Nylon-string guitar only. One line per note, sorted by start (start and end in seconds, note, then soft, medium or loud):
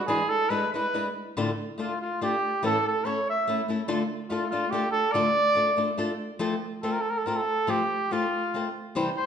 0.08 0.21 E3 medium
0.08 0.22 G#3 medium
0.08 0.22 D4 medium
0.08 0.22 E4 medium
0.08 0.22 B4 medium
0.50 0.64 G#3 medium
0.50 0.64 D4 soft
0.50 0.64 E4 medium
0.50 0.65 B4 medium
0.74 0.86 G#3 soft
0.74 0.86 D4 soft
0.74 0.86 E4 medium
0.74 0.86 B4 medium
0.94 1.07 G#3 medium
0.94 1.07 D4 medium
0.94 1.07 E4 soft
0.94 1.08 B4 medium
1.37 1.50 A2 medium
1.37 1.50 D3 medium
1.37 1.50 A3 medium
1.37 1.50 D4 medium
1.37 1.50 F4 medium
1.37 1.50 A4 medium
1.78 1.91 A3 soft
1.78 1.92 D4 medium
1.78 1.92 F4 medium
1.78 1.92 A4 soft
2.21 2.34 A3 medium
2.21 2.35 D4 medium
2.21 2.35 F4 medium
2.21 2.35 A4 medium
2.63 2.76 A2 medium
2.63 2.76 E3 medium
2.63 2.76 A3 medium
2.63 2.77 C#4 medium
2.63 2.76 E4 medium
2.63 2.77 A4 medium
3.05 3.18 A3 soft
3.05 3.19 C#4 soft
3.05 3.19 E4 soft
3.05 3.19 A4 medium
3.48 3.60 A3 medium
3.48 3.61 C#4 soft
3.48 3.61 E4 medium
3.48 3.61 A4 medium
3.68 3.81 A3 soft
3.68 3.81 C#4 medium
3.68 3.81 E4 soft
3.68 3.82 A4 medium
3.88 4.02 D3 medium
3.88 4.02 A3 medium
3.88 4.02 D4 medium
3.88 4.02 F4 medium
3.88 4.02 A4 medium
4.30 4.43 A3 medium
4.30 4.43 D4 medium
4.30 4.44 F4 medium
4.30 4.44 A4 medium
4.52 4.64 A3 soft
4.52 4.64 D4 medium
4.52 4.65 F4 soft
4.52 4.65 A4 soft
4.72 4.85 A3 medium
4.72 4.86 D4 medium
4.72 4.86 F4 medium
4.72 4.86 A4 medium
5.14 5.27 D3 medium
5.14 5.28 A3 medium
5.14 5.28 D4 medium
5.14 5.28 F4 medium
5.14 5.28 A4 medium
5.55 5.69 A3 soft
5.55 5.69 D4 soft
5.55 5.70 F4 soft
5.55 5.70 A4 soft
5.77 5.90 A3 soft
5.77 5.90 D4 medium
5.77 5.90 F4 soft
5.77 5.90 A4 medium
5.98 6.12 A3 medium
5.98 6.12 D4 medium
5.98 6.12 F4 medium
5.98 6.12 A4 medium
6.39 6.54 F3 medium
6.39 6.54 A3 medium
6.39 6.54 C4 medium
6.39 6.54 F4 medium
6.39 6.54 A4 medium
6.83 6.97 A3 medium
6.83 6.97 C4 soft
6.83 6.97 F4 medium
6.83 6.98 A4 soft
7.26 7.39 A3 soft
7.26 7.40 C4 soft
7.26 7.40 F4 medium
7.26 7.41 A4 medium
7.67 7.81 F3 medium
7.67 7.81 A3 medium
7.67 7.82 C4 medium
7.67 7.82 F4 medium
7.67 7.82 A4 medium
8.11 8.24 A3 soft
8.11 8.25 C4 soft
8.11 8.25 F4 soft
8.11 8.25 A4 medium
8.54 8.67 A3 soft
8.54 8.67 C4 medium
8.54 8.68 F4 medium
8.54 8.68 A4 medium
8.95 9.08 C3 medium
8.95 9.09 E3 medium
8.95 9.09 G3 medium
8.95 9.09 C4 medium
8.95 9.09 E4 medium
8.95 9.09 C5 medium